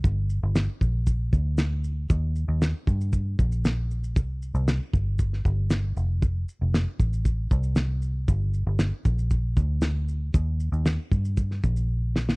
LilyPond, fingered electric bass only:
\new Staff \with { instrumentName = "Fingered electric bass" } { \clef bass \time 4/4 \key g \minor \tempo 4 = 116 g,,8. g,,8 r16 bes,,4 d,4. | ees,8. ees,8 r16 g,4 bes,,4. | c,8. c,8 r16 g,,4 g,,4 f,,8~ | f,,8 r16 f,,8 r16 a,,4 c,4. |
g,,8. g,,8 r16 bes,,4 d,4. | ees,8. ees,8 r16 g,4 bes,,4. | }